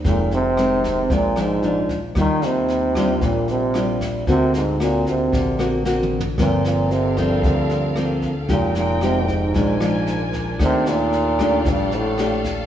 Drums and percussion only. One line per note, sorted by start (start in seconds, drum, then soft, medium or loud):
0.05 kick soft
0.05 snare soft
0.31 snare soft
0.57 cross-stick medium
0.57 snare soft
0.84 kick soft
0.84 snare soft
1.10 kick medium
1.10 snare soft
1.36 cross-stick medium
1.36 snare soft
1.62 snare soft
1.89 kick soft
1.89 snare soft
2.15 kick soft
2.15 cross-stick medium
2.15 snare soft
2.42 snare soft
2.68 snare soft
2.95 kick soft
2.95 cross-stick medium
2.95 snare soft
3.21 kick medium
3.21 snare soft
3.48 snare soft
3.74 cross-stick medium
3.74 snare soft
4.01 kick soft
4.01 snare soft
4.27 kick medium
4.27 snare soft
4.54 snare soft
4.80 cross-stick medium
4.80 snare soft
5.06 kick soft
5.06 snare soft
5.33 kick medium
5.33 snare soft
5.59 cross-stick soft
5.59 snare soft
5.85 snare soft
6.03 mid tom soft
6.20 floor tom medium
6.38 kick medium
6.38 cross-stick soft
6.38 snare soft
6.64 snare soft
6.91 snare soft
7.17 kick soft
7.17 cross-stick soft
7.17 snare soft
7.43 kick medium
7.43 snare soft
7.70 snare soft
7.96 cross-stick medium
7.96 snare soft
8.22 kick soft
8.22 snare soft
8.48 kick soft
8.48 snare soft
8.75 snare soft
9.01 cross-stick soft
9.01 snare soft
9.28 kick soft
9.28 snare soft
9.54 kick medium
9.54 snare soft
9.80 cross-stick soft
9.80 snare soft
10.07 snare soft
10.33 kick soft
10.33 snare soft
10.59 kick medium
10.59 cross-stick soft
10.59 snare soft
10.86 snare soft
11.12 snare soft
11.39 kick soft
11.39 cross-stick medium
11.39 snare soft
11.65 kick medium
11.65 snare soft
11.91 snare soft
12.18 cross-stick medium
12.18 snare soft
12.44 kick soft
12.44 snare soft